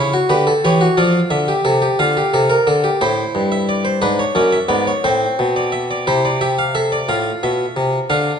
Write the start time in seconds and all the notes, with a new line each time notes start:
Already playing: C#3 E4 C#5
0.14 F#4
0.29 D3 G4 B4
0.47 A4
0.65 E3 G4 C#5
0.81 F#4
0.97 F3 F4 D5
1.30 D3 E5
1.48 G4
1.65 C3 A4
1.82 G4
1.99 D3 F4 F5
2.17 G4
2.34 C3 A4
2.50 A#4
2.67 D3 A4
2.84 G4
3.01 A2 E4 C5
3.35 G2
3.52 E5
3.69 D5
3.85 C5
4.02 G#2 D4 B4
4.19 C#5
4.35 F#2 C#4 D5
4.52 E5
4.69 G#2 B3 D5
4.87 C#5
5.04 A2 C4 C5
5.39 B2
5.56 D5
5.72 E5
5.91 D5
6.07 C3 E4 C5
6.25 D5
6.41 G4 E5
6.59 F5
6.75 A4 E5
6.92 D5
7.09 A2 F4 F5
7.43 B2 E5
7.76 C3
8.10 D3 D4 F5